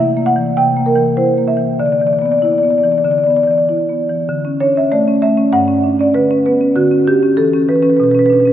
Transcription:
Already playing: C3 E4 E5
0.17 A#3
0.26 F#5
0.36 E3
0.57 C3 G5
0.77 A#3
0.86 A#4
0.95 E3
1.17 E4 C5
1.38 A#3
1.48 E5
1.57 E3
1.79 D3 D5
1.86 D5
1.92 D5
1.99 E3 D5
2.07 D5
2.13 D5
2.19 B3 D5
2.26 D5
2.32 D5
2.38 E4 D5
2.45 D5
2.52 D5
2.58 D5
2.63 B3 D5
2.71 D5
2.78 D5
2.84 E3 D5
2.92 D5
2.98 D5
3.04 D3 D5
3.11 D5
3.18 D5
3.24 B3 D5
3.30 D5
3.36 D5
3.43 D5
3.48 E3 D5
3.58 D5
3.69 E4
3.89 B3
4.09 E3
4.29 D3
4.45 C#4
4.60 D4 C#5
4.76 C#4 E5
4.92 A3 D5
5.08 C#4
5.22 A3 E5
5.38 C#4
5.53 G2 F#5
5.68 C#4
5.84 D4
5.99 C#4 D5
6.14 D3 B4
6.31 C#4
6.46 B3 B4
6.61 C#4
6.76 D3 F#4
6.91 C#4
7.07 D4 G4
7.23 C#4
7.37 E3 A4
7.54 C#4
7.69 E3 B4
7.76 B4
7.83 C#4 B4
7.89 B4
7.97 B2 B4
8.04 B4
8.11 C#4 B4
8.19 B4
8.26 D4 B4
8.33 B4
8.40 B4
8.45 C#4 B4

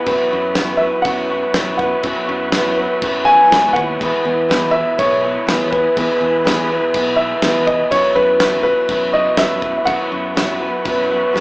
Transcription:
Already playing: F#5
0.06 F#2 F#3 B3 E4 F#4 B4, kick, crash
0.31 F#2 B3 E4 F#4
0.55 F#3 B3 E4 F#4 B4, snare, crash
0.77 F#4 B4 E5
0.82 B3 E4
1.02 F#2 F#3 F#5, kick, crash
1.06 B3 E4 F#4 B4
1.30 F#3 B3 E4 F#4
1.54 F#2 F#3 B3 E4 B4, snare, crash
1.58 F#4
1.77 E4 F#4 B4 F#5, kick
1.82 B3
2.03 F#2 F#3 B3 E4 F#4 B4, kick, crash
2.27 F#2 B3 E4 F#4
2.52 F#3 B3 E4 F#4 B4, snare, crash
2.77 B3 E4 F#4 B4
3.01 F#2 F#3 B3 E4 F#4 B4, kick, crash
3.25 B3 E4 F#4 G#5
3.29 F#3
3.51 C#2 F#3 B3 E4 F#4 B4, snare, crash
3.73 D#2 E4 F#4 B4 F#5, kick
3.78 B3
3.99 E2 B2 E3 G#3 B3 E4 G#4 B4, kick, crash
4.03 G#4
4.25 E2 E3 B3 E4 G#4
4.48 E2 B2 E3 G#3 B3 E4 G#4 B4, snare, crash
4.71 G#4 B4 E5
4.76 E3 B3 E4
4.98 B1 E3 G#3 B3 E4 G#4 B4 C#5, kick, crash
5.24 E2 B2 E3 B3 E4 G#4
5.47 E2 E3 G#3 B3 E4 G#4 B4, snare, crash
5.63 C#5
5.70 B3 E4 G#4 B4, kick
5.75 E3
5.96 E2 B2 E3 G#3 B3 E4 G#4 B4, kick, crash
6.21 E2 E3 B3 E4 G#4
6.45 E2 B2 E3 G#3 B3 E4 G#4 B4, snare, crash
6.70 E3 B3 E4 G#4 B4
6.94 B1 E3 G#3 B3 E4 G#4 B4, kick, crash
7.16 E3 B3 E4 G#4 E5
7.20 E2 B2
7.42 E2 E3 G#3 B3 E4 G#4 B4, snare, crash
7.67 E3 B3 E4 G#4 B4 D#5, kick
7.91 F#2 F#3 B3 E4 F#4 B4 C#5, kick, crash
8.16 F#2 B3 E4 F#4 B4
8.39 F#3 B3 E4 F#4 B4, snare, crash
8.63 B3 E4 F#4 B4
8.88 F#2 F#3 B3 E4 F#4 B4, kick, crash
9.13 F#3 B3 E4 F#4 D#5
9.37 F#2 F#3 B3 E4 F#4 B4 E5, snare, crash
9.59 F#4 B4, kick
9.63 B3 E4
9.77 E5
9.85 F#2 F#3 B3 E4 F#4 B4 F#5, kick, crash
10.12 F#2 B3 E4 F#4
10.36 F#3 B3 E4 F#4 B4, snare, crash
10.59 B3 E4 F#4 B4
10.85 F#2 F#3 B3 E4 F#4 B4, kick, crash
11.10 F#3 B3 E4 F#4
11.34 F#2 F#3 B3 E4 F#4 B4, snare

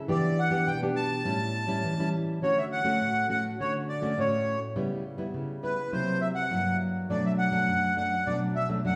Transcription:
0.08 E3 B3 D4 G4 D5
0.39 F#5
0.50 B3 D4 G4
0.67 B2 G5
0.82 B3 D4 G4
0.96 A5
1.25 A2 G3 C#4 E4
1.68 G3 C#4 E4
1.84 E3
1.99 G3 C#4 E4
2.42 D3 A3 C#4 F#4 C#5
2.58 E5
2.72 F#5
2.85 A3 C#4 F#4
3.01 A2
3.29 A3 C#4 F#4 F#5
3.60 D3 A3 C#4 F#4 C#5
3.89 D5
4.02 A3 C#4 F#4
4.17 A2 A3 C#4 F#4 C#5
4.76 C#3 G3 B3 E4
5.18 G3 B3 E4
5.34 C#3
5.63 G3 B3 E4 B4
5.93 C3 F#3 A#3 E4 C5
6.21 E5
6.35 F#5
6.51 G2 F#3 A#3 E4
7.10 B2 F#3 A3 D4 D5
7.26 E5
7.38 F#5
7.52 F#3 A3 D4
7.68 F#2
7.97 F#3 A3 D4 F#5
8.27 B2 F#3 A3 D4 D5
8.56 E5
8.69 F#3 A3 D4
8.85 F#2 F#3 A3 D4 F#5

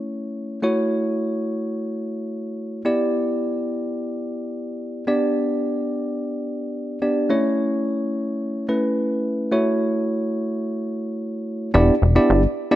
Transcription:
Already playing: A3 C#4 E4 C#5
0.63 A3 E4 F#4 C#5
2.85 B3 E4 G4 D5
5.07 B3 D4 G4 D5
7.02 B3 D4 G4 D5
7.29 A3 C#4 E4 C#5
8.69 A3 C#4 E4 B4
9.52 A3 E4 F#4 C#5
11.74 E1 B3 D4 E4 G4 D5
12.02 E1
12.16 B3 D4 E4 G4 D5
12.30 G1
12.71 B3 D4 E4 G4 D5

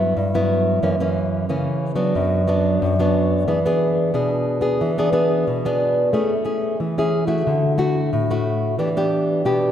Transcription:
Already playing: G2 F#3 B3 E4
0.17 G2
0.35 F#3 B3 E4
0.83 F#2 E3 A#3 C#4
1.00 E3 A#3 C#4
1.49 C#3 E3 A#3 C#4
1.96 F#3 B3 D4
2.15 F#2
2.48 F#3 B3 D4
2.82 F#2
3.00 F#3 B3 D4
3.48 E3 B3 D4 G#4
3.66 B3 D4 G#4
4.14 B2 B3 D4 G#4
4.61 B3 D4 G#4
4.81 E3
4.98 B3 D4 G#4
5.13 B3 D4 G#4
5.47 B2
5.65 B3 D4 G#4
6.13 A3 C#4 E4 G#4
6.45 C#4 E4 G#4
6.80 E3
6.98 C#4 E4 G#4
7.27 A3 E4 F#4
7.47 D3
7.78 A3 E4 F#4
8.13 A2
8.30 A3 E4 F#4
8.79 E3 B3 D4 G4
8.97 B3 D4 G4
9.45 B2 B3 D4 G4

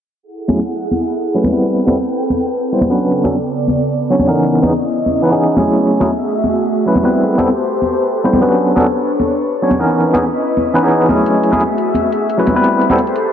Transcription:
0.23 E4 G#4 A4 F#5
0.48 F#3 A3 C#4 E4 G#4, high conga
0.91 high conga
1.34 F#3 A3 C#4 E4 B4
1.44 high conga
1.52 G3 B3 C4 E4 B4
1.61 C4 B4 G5
1.86 G3 B3 C4 E4 A4, high conga
2.30 high conga
2.72 G3 B3 C4 E4 C5
2.81 high conga
2.89 F#3 B3 C#4 D4 B4
2.99 C#3 B3 D5
3.24 F#3 B3 C#4 D4 A4, high conga
3.68 high conga
4.10 F#3 B3 C#4 D4 C#5
4.19 high conga
4.27 E3 B3 C#4 D#4 A#4
4.37 C#4 E4 D#5
4.62 E3 B3 C#4 D#4 G#4, high conga
5.06 high conga
5.22 E3 B3 C#4 D#4 B4
5.31 E3 B3 C#4 D#4 G#4
5.55 F#3 A3 C#4 E4 G#4, high conga
5.74 A3 F#4 G#4 E5
6.00 F#3 A3 C#4 E4 G#4, high conga
6.44 high conga
6.86 F#3 A3 C#4 E4 B4
6.95 high conga
7.03 G3 B3 C4 E4 B4
7.12 G4 A4 B4 C5
7.38 G3 B3 C4 E4 A4, high conga
7.82 high conga
8.24 G3 B3 C4 E4 C5
8.33 high conga
8.41 F#3 B3 C#4 D4 B4
8.50 D4 C#5
8.76 F#3 B3 C#4 D4 A4, high conga
9.20 high conga
9.62 F#3 B3 C#4 D4 C#5
9.71 high conga
9.79 E3 B3 C#4 D#4 A#4
9.88 C#4 E4 B4 D#5
10.13 E3 B3 C#4 D#4 G#4, high conga
10.57 high conga
10.74 E3 B3 C#4 D#4 B4
10.82 E3 B3 C#4 D#4 G#4
11.08 F#3 A3 C#4 E4 G#4, high conga
11.26 A3 F#4 G#4 E5, closed hi-hat
11.43 closed hi-hat
11.52 F#3 A3 C#4 E4 G#4, high conga
11.61 closed hi-hat
11.78 closed hi-hat
11.94 closed hi-hat, high conga
12.12 closed hi-hat
12.30 closed hi-hat
12.38 F#3 A3 C#4 E4 B4
12.47 closed hi-hat, high conga
12.55 G3 B3 C4 E4 B4
12.64 G4 A4 B4 C5, closed hi-hat
12.81 closed hi-hat
12.89 G3 B3 C4 E4 A4, high conga
12.98 closed hi-hat
13.07 closed hi-hat
13.16 closed hi-hat

